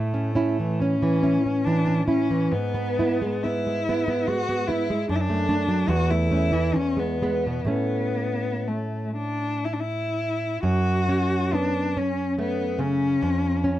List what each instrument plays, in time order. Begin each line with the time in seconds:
Already playing: nylon-string guitar A2, cello A3
0.14 nylon-string guitar C#4
0.35 nylon-string guitar C#4 E4
0.60 nylon-string guitar E3
0.81 cello C#4, nylon-string guitar C#4
1.02 nylon-string guitar E3
1.23 nylon-string guitar C#4 E4
1.46 nylon-string guitar C#4
1.64 nylon-string guitar E3, cello D4
1.87 nylon-string guitar C#4
2.07 cello C#4, nylon-string guitar C#4 E4
2.30 nylon-string guitar E3
2.52 nylon-string guitar G#2, cello B3
2.74 nylon-string guitar B3
2.99 nylon-string guitar B3 E4
3.22 nylon-string guitar G#3
3.44 nylon-string guitar B3, cello E4
3.67 nylon-string guitar G#3
3.89 nylon-string guitar B3 E4
4.08 nylon-string guitar B3
4.28 nylon-string guitar G#3, cello F#4
4.49 nylon-string guitar B3
4.68 nylon-string guitar B3 E4, cello E4
4.90 nylon-string guitar G#3
5.09 nylon-string guitar F#2, cello D4
5.16 cello E4
5.21 cello D4
5.30 nylon-string guitar A3
5.49 nylon-string guitar A3 D4
5.68 nylon-string guitar F#3
5.88 nylon-string guitar E2, cello F#4
6.11 nylon-string guitar A3, cello E4
6.32 nylon-string guitar A3 C#4
6.52 nylon-string guitar E3
6.75 nylon-string guitar E2, cello C#4
6.97 nylon-string guitar G#3, cello B3
7.22 nylon-string guitar G#3 B3
7.47 nylon-string guitar B2
7.65 nylon-string guitar A2 A3 C#4
7.69 cello B3
8.68 cello A3
9.16 cello D4
9.65 cello E4
9.73 cello D4
9.80 cello E4
10.63 nylon-string guitar F#2, cello F#4
11.09 nylon-string guitar C#4
11.53 nylon-string guitar B3, cello D4
11.97 nylon-string guitar C#4, cello C#4
12.39 nylon-string guitar A3, cello B3
12.79 nylon-string guitar C#3, cello C#4
13.22 nylon-string guitar F2
13.64 nylon-string guitar C#4